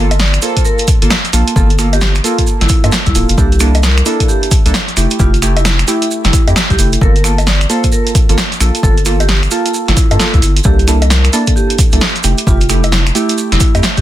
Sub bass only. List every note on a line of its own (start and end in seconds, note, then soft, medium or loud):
0.00 0.39 G1 loud
1.02 1.08 G1 loud
1.33 1.43 A#1 medium
1.56 2.20 G1 loud
2.61 2.67 G1 medium
2.84 2.90 G2 medium
3.07 3.13 C2 loud
3.15 3.25 D1 medium
3.29 3.35 F1 medium
3.38 4.02 C2 loud
4.66 4.72 C2 loud
4.97 5.07 F1 medium
5.20 5.84 F1 loud
6.25 6.31 F1 medium
6.47 6.54 F2 medium
6.70 6.76 C2 medium
6.78 6.97 F1 medium
7.01 7.66 G1 loud
8.29 8.35 G1 medium
8.60 8.71 A#1 medium
8.83 9.48 G1 loud
9.88 9.94 G1 medium
10.11 10.17 G2 medium
10.34 10.40 D2 medium
10.42 10.60 G1 medium
10.65 11.29 C2 loud
11.93 11.99 C2 loud
12.24 12.34 F1 medium
12.47 13.11 F1 loud
13.52 13.58 F1 medium
13.75 13.81 F2 medium
13.98 14.01 C2 medium